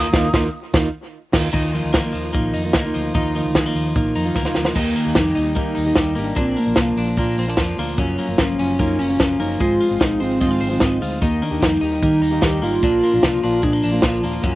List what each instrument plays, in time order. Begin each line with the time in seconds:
Already playing: clean electric guitar D#3 A#3 D#4, soft synth lead D#6
0.13 fingered electric bass D#2, steel-string acoustic guitar A#3 D#4 F4, kick, snare
0.33 fingered electric bass D#2, steel-string acoustic guitar A#3 D#4 F4, kick, snare
0.73 fingered electric bass D#2, steel-string acoustic guitar D#3 A#3 D#4 F4, kick, snare
1.32 fingered electric bass D#2, steel-string acoustic guitar D#3 A#3 D#4 F4, kick, snare, crash
1.53 fingered electric bass D#2, steel-string acoustic guitar D#3 A#3 D#4 F4, clean electric guitar D#3 D#4, kick, closed hi-hat
1.73 steel-string acoustic guitar D#3 A#3 D#4 F4, clean electric guitar F3, open hi-hat
1.84 fingered electric bass D2
1.93 clean electric guitar A#3, kick, snare, closed hi-hat
2.02 steel-string acoustic guitar A#3 D#4 F4
2.13 fingered electric bass D#2, clean electric guitar F3, open hi-hat
2.33 fingered electric bass A#1, steel-string acoustic guitar D#3 A#3 D#4 F4, clean electric guitar A#3, kick, closed hi-hat
2.54 fingered electric bass F2, clean electric guitar D#4, open hi-hat
2.64 steel-string acoustic guitar D#3 A#3 D#4 F4
2.73 fingered electric bass D2, clean electric guitar A#3, kick, snare, closed hi-hat
2.85 steel-string acoustic guitar D#3 A#3 D#4 F4
2.94 fingered electric bass D2, clean electric guitar F3, open hi-hat
3.14 fingered electric bass D#2, clean electric guitar D#3 D#4, steel-string acoustic guitar D#3 A#3 D#4 F4, kick, closed hi-hat
3.35 steel-string acoustic guitar D#3 A#3 D#4 F4, clean electric guitar F3, open hi-hat
3.46 fingered electric bass D2
3.55 clean electric guitar G#3, kick, snare, closed hi-hat
3.65 clean electric guitar A#3, steel-string acoustic guitar A#3 D#4 F4
3.75 fingered electric bass D#2, clean electric guitar F3, open hi-hat
3.95 fingered electric bass A#1, steel-string acoustic guitar D#3 A#3 D#4 F4, clean electric guitar A#3, kick, closed hi-hat
4.15 fingered electric bass F2, clean electric guitar D#4, open hi-hat
4.25 steel-string acoustic guitar D#3 A#3 D#4 F4
4.35 fingered electric bass D2, clean electric guitar A#3, kick, snare
4.45 steel-string acoustic guitar D#3 A#3 D#4 F4, snare
4.55 fingered electric bass D2, clean electric guitar F3, snare
4.65 snare
4.75 fingered electric bass D#2, steel-string acoustic guitar D#3 A#3 D#4 G4, clean electric guitar D#3 D#4, soft synth lead A#3, kick, crash
4.96 clean electric guitar A#3, open hi-hat
5.05 fingered electric bass D#2, steel-string acoustic guitar A#3 D#4 G4
5.15 fingered electric bass F2, clean electric guitar G3, soft synth lead D#4, kick, snare, closed hi-hat
5.35 fingered electric bass D#2, steel-string acoustic guitar D#3 A#3 D#4 G4, clean electric guitar D#4, open hi-hat
5.55 steel-string acoustic guitar D#3 A#3 D#4 G4, clean electric guitar A#3, soft synth lead D#4, kick, closed hi-hat
5.75 fingered electric bass D#2, clean electric guitar D#4, open hi-hat
5.86 steel-string acoustic guitar D#3 A#3 D#4 G4
5.95 clean electric guitar G3, kick, snare, closed hi-hat
6.15 fingered electric bass G#1, steel-string acoustic guitar D#3 A#3 D#4 G4, clean electric guitar A#3, open hi-hat
6.20 soft synth lead D4
6.36 fingered electric bass A#1, clean electric guitar A#2 D4, steel-string acoustic guitar F3 A#3 D4 F4, kick, closed hi-hat
6.40 soft synth lead C4
6.57 clean electric guitar A#3, soft synth lead A#3, open hi-hat
6.66 fingered electric bass A#1, steel-string acoustic guitar A#3 D4 F4
6.76 fingered electric bass C2, clean electric guitar F3, kick, snare, closed hi-hat
6.96 fingered electric bass A#1, steel-string acoustic guitar F3 A#3 D4 F4, clean electric guitar D4, open hi-hat
7.17 fingered electric bass A#2, steel-string acoustic guitar A#2 F3 A#3 D4 F4, clean electric guitar A#3, kick, closed hi-hat
7.37 fingered electric bass A#1, clean electric guitar C4, open hi-hat
7.47 steel-string acoustic guitar A#2 F3 A#3 D4 F4, clean electric guitar D4
7.57 fingered electric bass F2, clean electric guitar F3, kick, snare, closed hi-hat
7.77 fingered electric bass D2, steel-string acoustic guitar F3 A#3 D4 F4, clean electric guitar A#3, open hi-hat
7.98 fingered electric bass F#1, clean electric guitar F#2 C#4, steel-string acoustic guitar F#3 A#3 C#4 F4, kick, closed hi-hat
8.18 clean electric guitar A#3, open hi-hat
8.28 fingered electric bass F#1, steel-string acoustic guitar A#3 C#4 F4
8.38 fingered electric bass G#1, clean electric guitar F3, soft synth lead C#4, kick, snare, closed hi-hat
8.59 fingered electric bass F#1, steel-string acoustic guitar F#3 A#3 C#4 F4, clean electric guitar C#4, open hi-hat
8.79 fingered electric bass F#2, steel-string acoustic guitar F#3 A#3 C#4 F4, clean electric guitar A#3, soft synth lead D#4, kick, closed hi-hat
8.99 fingered electric bass F#1, soft synth lead C#4, clean electric guitar C#4, open hi-hat
9.09 steel-string acoustic guitar F#3 A#3 C#4 F4
9.20 fingered electric bass F#1, clean electric guitar F3, kick, snare, closed hi-hat
9.39 fingered electric bass F#1, steel-string acoustic guitar F#3 A#3 C#4 F4, clean electric guitar A#3, soft synth lead D#4, open hi-hat
9.59 fingered electric bass G#1, steel-string acoustic guitar F3 G#3 C4 F4, clean electric guitar G#3 C5, soft synth lead F4, kick, closed hi-hat
9.81 clean electric guitar F4, open hi-hat
9.89 fingered electric bass G#1, steel-string acoustic guitar F3 G#3 C4 F4
10.00 fingered electric bass A#1, clean electric guitar D#4, soft synth lead D#4, kick, snare, closed hi-hat
10.20 fingered electric bass G#1, steel-string acoustic guitar F3 G#3 C4 F4, soft synth lead C4, clean electric guitar C5, open hi-hat
10.40 steel-string acoustic guitar G#2 D#3 F3 G#3 C4 F4, fingered electric bass G#2, clean electric guitar D#4, kick, closed hi-hat
10.51 clean electric guitar F4
10.61 fingered electric bass G#1, soft synth lead C4, clean electric guitar C5, open hi-hat
10.71 steel-string acoustic guitar G#2 D#3 F3 G#3 C4 F4
10.80 fingered electric bass G#1, clean electric guitar D#4, kick, snare, closed hi-hat
11.00 fingered electric bass D2, steel-string acoustic guitar F3 G#3 C4 F4, clean electric guitar F4, open hi-hat
11.20 fingered electric bass D#2, steel-string acoustic guitar D#3 A#3 D#4 G4, clean electric guitar D#3 D#4, soft synth lead A#3, kick, closed hi-hat
11.42 clean electric guitar A#3, soft synth lead D4, open hi-hat
11.51 fingered electric bass D#2, steel-string acoustic guitar A#3 D#4 G4
11.61 fingered electric bass F2, clean electric guitar G3, soft synth lead D#4, kick, snare, closed hi-hat
11.81 fingered electric bass D#2, steel-string acoustic guitar D#3 A#3 D#4 G4, clean electric guitar D#4, open hi-hat
12.01 steel-string acoustic guitar D#3 A#3 D#4 G4, fingered electric bass D#3, clean electric guitar A#3, soft synth lead D#4, kick, closed hi-hat
12.21 fingered electric bass D#2, clean electric guitar D#4, open hi-hat
12.31 steel-string acoustic guitar D#3 A#3 D#4 G4
12.42 fingered electric bass D#2, clean electric guitar G3, soft synth lead G4, kick, snare, closed hi-hat
12.61 fingered electric bass G#1, steel-string acoustic guitar D#3 A#3 D#4 G4, clean electric guitar A#3, soft synth lead F4, open hi-hat
12.82 fingered electric bass A#1, clean electric guitar A#2 D4, steel-string acoustic guitar F3 A#3 D4 F4, kick, closed hi-hat
13.03 clean electric guitar A#3, open hi-hat
13.12 fingered electric bass A#1, steel-string acoustic guitar A#3 D4 F4
13.23 fingered electric bass C2, clean electric guitar F3, kick, snare, closed hi-hat
13.43 fingered electric bass A#1, steel-string acoustic guitar F3 A#3 D4 F4, clean electric guitar D4, open hi-hat
13.62 steel-string acoustic guitar A#2 F3 A#3 D4 F4, fingered electric bass A#2, clean electric guitar G#3, soft synth lead D4, kick, closed hi-hat
13.73 clean electric guitar A#3
13.82 fingered electric bass A#1, clean electric guitar D4, open hi-hat
13.92 steel-string acoustic guitar A#2 F3 A#3 D4 F4
14.02 fingered electric bass A#1, clean electric guitar F3, soft synth lead F4, kick, snare, closed hi-hat
14.22 fingered electric bass D#1, steel-string acoustic guitar F3 A#3 D4 F4, clean electric guitar A#3, open hi-hat
14.42 fingered electric bass F#1, clean electric guitar F#2 C#4, steel-string acoustic guitar F#3 A#3 C#4 F4, kick, closed hi-hat